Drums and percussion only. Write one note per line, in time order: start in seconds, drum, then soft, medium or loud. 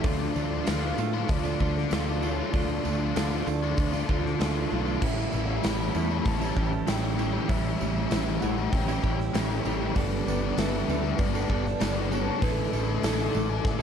0.04 kick loud
0.04 open hi-hat medium
0.36 tambourine medium
0.67 snare loud
0.67 open hi-hat medium
0.67 tambourine loud
0.98 tambourine medium
1.14 tambourine soft
1.29 kick loud
1.29 open hi-hat medium
1.45 tambourine medium
1.60 kick medium
1.60 tambourine soft
1.76 snare soft
1.76 tambourine soft
1.91 snare loud
1.91 open hi-hat medium
1.91 tambourine medium
2.23 tambourine medium
2.54 kick loud
2.54 open hi-hat medium
2.70 tambourine soft
2.85 tambourine medium
3.16 snare loud
3.16 open hi-hat medium
3.16 tambourine medium
3.33 tambourine soft
3.47 tambourine medium
3.78 kick loud
3.78 open hi-hat medium
3.78 tambourine soft
3.93 tambourine medium
4.09 kick medium
4.26 snare soft
4.41 snare loud
4.41 open hi-hat medium
4.41 tambourine medium
4.56 tambourine soft
4.87 tambourine soft
5.02 kick loud
5.02 crash loud
5.33 tambourine medium
5.63 snare loud
5.63 open hi-hat medium
5.63 tambourine medium
5.94 tambourine medium
6.11 tambourine soft
6.25 kick loud
6.25 open hi-hat medium
6.42 tambourine medium
6.57 kick medium
6.73 tambourine soft
6.87 snare loud
6.87 open hi-hat medium
6.87 tambourine loud
7.19 tambourine medium
7.49 kick loud
7.49 open hi-hat medium
7.81 tambourine medium
8.11 snare loud
8.11 open hi-hat medium
8.11 tambourine loud
8.42 tambourine medium
8.58 tambourine soft
8.73 kick loud
8.73 open hi-hat medium
8.89 tambourine medium
9.04 kick medium
9.04 tambourine soft
9.20 snare soft
9.20 tambourine soft
9.34 snare loud
9.34 open hi-hat medium
9.34 tambourine loud
9.66 tambourine medium
9.96 kick loud
9.96 open hi-hat medium
10.28 tambourine medium
10.58 snare loud
10.58 open hi-hat medium
10.58 tambourine loud
10.89 tambourine medium
11.05 tambourine soft
11.18 kick loud
11.18 open hi-hat medium
11.35 tambourine medium
11.50 kick medium
11.66 snare soft
11.66 tambourine soft
11.80 snare loud
11.80 open hi-hat medium
11.80 tambourine medium
12.12 tambourine medium
12.42 kick loud
12.42 open hi-hat medium
12.73 tambourine medium
12.89 tambourine soft
13.03 snare loud
13.03 open hi-hat medium
13.03 tambourine medium
13.34 tambourine medium
13.65 kick loud
13.65 snare medium